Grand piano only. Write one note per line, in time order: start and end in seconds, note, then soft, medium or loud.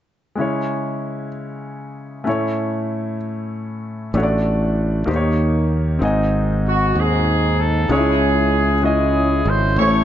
0.35 1.29 C#3 soft
0.35 2.21 G#3 soft
0.35 2.23 C#4 soft
0.35 2.23 E4 soft
0.41 2.24 C#5 soft
2.24 3.17 A2 soft
2.24 4.10 A3 soft
2.24 4.10 C#4 soft
2.24 4.11 E4 soft
2.29 4.12 C#5 medium
4.14 5.05 A2 soft
4.14 5.09 A3 medium
4.14 5.09 D4 soft
4.14 5.10 F#4 soft
4.14 4.22 C#5 soft
4.23 5.13 D5 medium
5.06 5.98 D#3 medium
5.06 6.01 A#3 medium
5.06 6.00 D#4 soft
5.06 6.02 G4 medium
5.06 5.15 C5 soft
5.16 6.06 C#5 medium
5.99 6.93 G#2 medium
5.99 7.85 C4 medium
5.99 7.86 D#4 medium
6.03 7.88 D#5 medium
6.03 7.87 G#5 soft
7.89 8.80 C#3 soft
7.89 8.72 G#3 medium
7.89 8.73 C#4 medium
7.89 7.97 D#4 soft
7.89 8.74 C#5 medium
7.98 8.76 E4 medium
8.82 9.66 G#3 medium
8.82 9.66 C#4 soft
8.82 9.66 E4 soft
8.82 9.67 D#5 medium
9.78 10.04 A2 soft
9.78 10.04 A3 medium
9.78 10.04 C#4 medium
9.78 10.04 E4 medium
9.78 9.86 C5 medium
9.87 10.04 C#5 medium